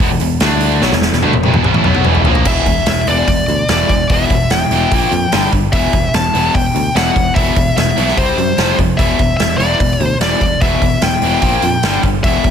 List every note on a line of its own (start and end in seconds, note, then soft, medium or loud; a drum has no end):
0.00 0.09 E2 medium
0.00 0.10 B2 loud
0.00 open hi-hat medium
0.11 0.20 E1 medium
0.11 0.19 E2 medium
0.11 0.20 B2 medium
0.20 0.40 E1 medium
0.20 0.37 E2 medium
0.20 0.38 B2 medium
0.20 open hi-hat medium
0.40 0.79 D2 medium
0.40 0.81 D3 medium
0.40 0.82 A3 loud
0.40 0.82 D4 medium
0.40 snare loud
0.40 open hi-hat medium
0.61 open hi-hat medium
0.81 0.91 B1 loud
0.81 0.90 B2 loud
0.81 0.92 F#3 loud
0.81 snare medium
0.91 1.11 E1 medium
0.91 1.08 E2 medium
0.91 1.08 B2 medium
0.91 snare medium
1.02 snare medium
1.12 1.22 E1 medium
1.12 1.23 E2 medium
1.12 1.22 B2 medium
1.12 snare medium
1.22 1.33 D2 loud
1.22 1.32 D3 medium
1.22 1.33 A3 medium
1.22 high tom medium
1.33 1.43 E1 medium
1.33 1.42 E2 medium
1.33 1.43 B2 medium
1.33 high tom medium
1.43 1.53 F1 medium
1.43 1.53 F2 medium
1.43 1.53 C3 loud
1.43 high tom medium
1.54 1.64 E1 medium
1.54 1.64 E2 medium
1.54 1.63 B2 medium
1.54 mid tom medium
1.64 1.74 C2 loud
1.64 1.74 C3 medium
1.64 1.74 G3 medium
1.64 mid tom medium
1.74 1.84 A1 medium
1.74 1.83 A2 medium
1.74 1.84 E3 medium
1.74 mid tom medium
1.83 2.04 B1 medium
1.83 2.03 B2 medium
1.83 2.04 F#3 medium
1.83 2.05 B3 medium
1.83 mid tom medium
1.95 mid tom medium
2.04 2.24 E1 medium
2.04 2.25 E2 medium
2.04 2.25 B2 medium
2.04 2.25 E3 loud
2.04 mid tom medium
2.15 floor tom medium
2.25 2.45 A#1 medium
2.25 2.45 A#2 medium
2.25 2.46 F3 medium
2.25 2.46 A#3 medium
2.25 floor tom medium
2.35 floor tom medium
2.45 2.59 E1 medium
2.45 2.66 E2 medium
2.45 2.66 B2 medium
2.45 2.66 E3 medium
2.45 2.87 E5 medium
2.45 kick loud
2.45 crash loud
2.66 2.80 E1 medium
2.66 2.85 E2 medium
2.66 2.86 B2 medium
2.66 kick medium
2.66 open hi-hat medium
2.86 3.01 E1 medium
2.86 3.06 E2 medium
2.86 3.06 B2 medium
2.86 3.08 E5 medium
2.86 snare loud
2.86 open hi-hat medium
3.07 3.21 E1 medium
3.07 3.27 E2 medium
3.07 3.28 B2 medium
3.07 3.28 E3 loud
3.07 3.69 D5 medium
3.07 open hi-hat medium
3.27 3.41 E1 medium
3.27 3.47 E2 medium
3.27 3.47 B2 medium
3.27 kick medium
3.27 open hi-hat medium
3.48 3.62 D2 medium
3.48 3.67 E2 medium
3.48 3.68 B2 medium
3.48 open hi-hat soft
3.68 3.83 E1 medium
3.68 3.88 E2 medium
3.68 3.89 B2 medium
3.68 3.89 E3 medium
3.68 4.11 D5 medium
3.68 snare loud
3.68 open hi-hat medium
3.89 4.03 E1 medium
3.89 4.08 E2 medium
3.89 4.08 B2 medium
3.89 kick medium
3.89 open hi-hat medium
4.10 4.24 E1 medium
4.10 4.29 E2 medium
4.10 4.29 B2 medium
4.10 4.30 E3 loud
4.10 4.49 E5 loud
4.10 kick loud
4.10 open hi-hat medium
4.30 4.44 E1 medium
4.30 4.49 E2 medium
4.30 4.50 B2 medium
4.30 kick medium
4.30 open hi-hat medium
4.50 4.64 E1 medium
4.50 4.70 E2 medium
4.50 4.70 B2 medium
4.50 5.49 G5 medium
4.50 snare loud
4.50 open hi-hat medium
4.71 4.85 E1 medium
4.71 4.91 E2 medium
4.71 4.91 B2 medium
4.71 4.91 E3 medium
4.71 open hi-hat medium
4.92 5.05 A#1 medium
4.92 5.11 A#2 medium
4.92 5.12 F3 medium
4.92 5.12 A#3 loud
4.92 kick medium
4.92 open hi-hat medium
5.11 5.25 F2 medium
5.11 5.31 A#2 medium
5.11 5.31 F3 medium
5.11 open hi-hat medium
5.32 5.46 G1 medium
5.32 5.52 G2 medium
5.32 5.52 D3 medium
5.32 5.52 G3 medium
5.32 snare loud
5.32 open hi-hat medium
5.52 5.66 G1 medium
5.52 5.72 G2 medium
5.52 5.72 D3 medium
5.52 kick medium
5.52 open hi-hat soft
5.72 5.87 E1 medium
5.72 5.92 E2 medium
5.72 5.93 B2 medium
5.72 5.93 E3 loud
5.72 6.15 E5 medium
5.72 kick loud
5.72 open hi-hat medium
5.93 6.07 E1 medium
5.93 6.12 E2 medium
5.93 6.12 B2 medium
5.93 kick medium
5.93 open hi-hat medium
6.14 6.28 E1 medium
6.14 6.33 E2 medium
6.14 6.33 B2 medium
6.14 6.55 A5 loud
6.14 snare loud
6.14 open hi-hat medium
6.34 6.48 E1 medium
6.34 6.53 E2 medium
6.34 6.53 B2 medium
6.34 6.54 E3 loud
6.34 open hi-hat medium
6.54 6.68 E1 medium
6.54 6.73 E2 medium
6.54 6.73 B2 medium
6.54 6.96 G5 medium
6.54 kick medium
6.54 open hi-hat medium
6.75 6.88 D2 medium
6.75 6.94 E2 medium
6.75 6.94 B2 medium
6.75 open hi-hat medium
6.95 7.09 E1 medium
6.95 7.15 E2 medium
6.95 7.15 B2 medium
6.95 7.15 E3 loud
6.95 7.34 F#5 loud
6.95 snare loud
6.95 open hi-hat medium
7.16 7.29 E1 medium
7.16 7.35 E2 medium
7.16 7.35 B2 medium
7.16 kick medium
7.16 open hi-hat medium
7.35 7.50 E1 medium
7.35 7.55 E2 medium
7.35 7.55 B2 loud
7.35 7.56 E3 loud
7.35 7.76 E5 medium
7.35 kick loud
7.35 open hi-hat medium
7.56 7.70 E1 medium
7.56 7.75 E2 medium
7.56 7.75 B2 medium
7.56 kick medium
7.56 open hi-hat medium
7.77 7.91 E1 medium
7.77 7.96 E2 medium
7.77 7.96 B2 medium
7.77 8.19 E5 loud
7.77 snare loud
7.77 open hi-hat medium
7.97 8.11 B1 medium
7.97 8.17 E2 medium
7.97 8.16 B2 medium
7.97 8.17 E3 medium
7.97 open hi-hat medium
8.08 snare soft
8.17 8.31 C2 medium
8.17 8.36 C3 medium
8.17 8.36 G3 loud
8.17 8.37 C4 medium
8.17 8.75 C5 medium
8.17 kick medium
8.17 open hi-hat medium
8.37 8.51 F#2 medium
8.37 8.56 C3 medium
8.37 8.56 G3 medium
8.37 open hi-hat medium
8.57 8.72 F1 medium
8.57 8.77 F2 medium
8.57 8.77 C3 medium
8.57 8.77 F3 medium
8.57 snare loud
8.57 open hi-hat medium
8.78 8.92 F1 medium
8.78 8.97 F2 medium
8.78 8.97 C3 medium
8.78 kick medium
8.78 open hi-hat soft
8.98 9.13 E1 medium
8.98 9.17 E2 medium
8.98 9.18 B2 medium
8.98 9.18 E3 medium
8.98 9.36 E5 medium
8.98 kick loud
8.98 open hi-hat medium
9.19 9.33 E1 medium
9.19 9.37 E2 medium
9.19 9.38 B2 medium
9.19 kick medium
9.19 open hi-hat medium
9.37 9.54 E1 medium
9.37 9.58 E2 medium
9.37 9.58 B2 medium
9.37 9.57 E5 medium
9.37 snare loud
9.37 open hi-hat medium
9.58 9.74 E1 medium
9.58 9.79 E2 medium
9.58 9.79 B2 medium
9.58 9.79 E3 loud
9.58 10.03 D5 loud
9.58 open hi-hat medium
9.80 9.94 E1 medium
9.80 9.99 E2 medium
9.80 9.99 B2 medium
9.80 kick medium
9.80 open hi-hat medium
10.00 10.14 D2 medium
10.00 10.19 E2 medium
10.00 10.19 B2 medium
10.00 10.16 C5 loud
10.00 open hi-hat medium
10.20 10.34 E1 medium
10.20 10.40 E2 medium
10.20 10.40 B2 loud
10.20 10.40 E3 medium
10.20 10.61 D5 medium
10.20 snare loud
10.20 open hi-hat medium
10.41 10.55 E1 medium
10.41 10.60 E2 medium
10.41 10.60 B2 medium
10.41 kick medium
10.41 open hi-hat medium
10.61 10.75 E1 medium
10.61 10.81 E2 medium
10.61 10.81 B2 medium
10.61 10.81 E3 loud
10.61 11.04 E5 loud
10.61 kick loud
10.61 open hi-hat medium
10.81 10.95 E1 medium
10.81 11.01 E2 medium
10.81 11.01 B2 medium
10.81 kick medium
10.81 open hi-hat medium
11.01 11.15 E1 medium
11.01 11.20 E2 medium
11.01 11.21 B2 medium
11.01 12.00 G5 medium
11.01 snare loud
11.01 open hi-hat medium
11.21 11.36 E1 medium
11.21 11.41 E2 medium
11.21 11.42 B2 medium
11.21 11.42 E3 loud
11.21 open hi-hat medium
11.42 11.56 A#1 medium
11.42 11.62 A#2 medium
11.42 11.62 F3 medium
11.42 11.62 A#3 loud
11.42 kick medium
11.42 open hi-hat medium
11.62 11.76 F2 medium
11.62 11.82 A#2 medium
11.62 11.82 F3 medium
11.62 open hi-hat medium
11.83 11.97 G1 medium
11.83 12.03 G2 medium
11.83 12.03 D3 medium
11.83 12.03 G3 medium
11.83 snare loud
11.83 open hi-hat medium
12.03 12.17 G1 medium
12.03 12.23 G2 medium
12.03 12.23 D3 medium
12.03 kick medium
12.03 open hi-hat soft
12.24 12.37 E1 medium
12.24 12.44 E2 loud
12.24 12.44 B2 loud
12.24 12.44 E3 medium
12.24 12.51 E5 medium
12.24 kick loud
12.24 open hi-hat medium
12.44 12.51 E1 medium
12.44 12.51 E2 medium
12.44 12.51 B2 medium
12.44 kick medium
12.44 open hi-hat medium